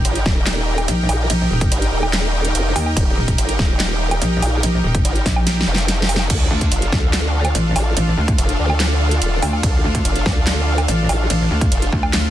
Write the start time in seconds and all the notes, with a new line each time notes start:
Already playing: D#4 G4 A#4 G5
0.05 G1, closed hi-hat, ride
0.15 closed hi-hat
0.26 D#1, kick, snare
0.47 snare, clap, closed hi-hat, ride
0.78 closed hi-hat, low woodblock
0.88 A#1, closed hi-hat, ride
1.09 A#1, open hi-hat, low woodblock
1.30 A#1, closed hi-hat, ride
1.51 D#1
1.61 kick, closed hi-hat
1.71 G1, closed hi-hat, ride
1.82 closed hi-hat
1.92 D#1
2.03 low woodblock
2.13 snare, clap, closed hi-hat, ride
2.45 closed hi-hat
2.55 F1, closed hi-hat, ride
2.76 D#2, open hi-hat, low woodblock
2.86 low woodblock
2.97 D#1, kick, closed hi-hat, ride
3.17 D#1
3.28 kick, closed hi-hat
3.38 G1, closed hi-hat, ride
3.49 closed hi-hat
3.59 D#1, kick, snare
3.80 snare, clap, closed hi-hat, ride
4.11 closed hi-hat, low woodblock
4.22 A#1, closed hi-hat, ride
4.42 A#1, open hi-hat, low woodblock
4.63 A#1, closed hi-hat, ride
4.84 D#1
4.95 kick, closed hi-hat
5.05 G1, closed hi-hat, ride
5.16 closed hi-hat
5.26 A#1, kick, snare, open hi-hat
5.36 low woodblock
5.47 snare, closed hi-hat, ride
5.61 snare
5.67 F1
5.74 snare, closed hi-hat
5.88 snare, closed hi-hat, ride
6.02 snare
6.09 open hi-hat, low woodblock
6.16 snare, low woodblock
6.30 D2 D4 F4 A4 F5, kick, closed hi-hat, ride, crash
6.51 D2
6.61 kick, closed hi-hat
6.72 F1, closed hi-hat, ride
6.82 closed hi-hat
6.92 D2, kick, snare
7.13 snare, clap, closed hi-hat, ride
7.45 closed hi-hat, low woodblock
7.55 A1, closed hi-hat, ride
7.76 A1, open hi-hat, low woodblock
7.97 A1, closed hi-hat, ride
8.18 D2
8.28 kick, closed hi-hat
8.38 F1, closed hi-hat, ride
8.49 closed hi-hat
8.59 D2
8.70 low woodblock
8.80 snare, clap, closed hi-hat, ride
9.11 closed hi-hat
9.22 D#1, closed hi-hat, ride
9.42 D2, open hi-hat, low woodblock
9.53 low woodblock
9.63 D2, kick, closed hi-hat, ride
9.84 D2
9.95 kick, closed hi-hat
10.05 F1, closed hi-hat, ride
10.16 closed hi-hat
10.26 D2, kick, snare
10.47 snare, clap, closed hi-hat, ride
10.78 closed hi-hat, low woodblock
10.88 A1, closed hi-hat, ride
11.09 A1, open hi-hat, low woodblock
11.30 A1, closed hi-hat, ride
11.51 D2
11.61 kick, closed hi-hat
11.72 F1, closed hi-hat, ride
11.82 closed hi-hat
11.93 D2, kick
12.03 low woodblock
12.13 snare, clap, closed hi-hat, ride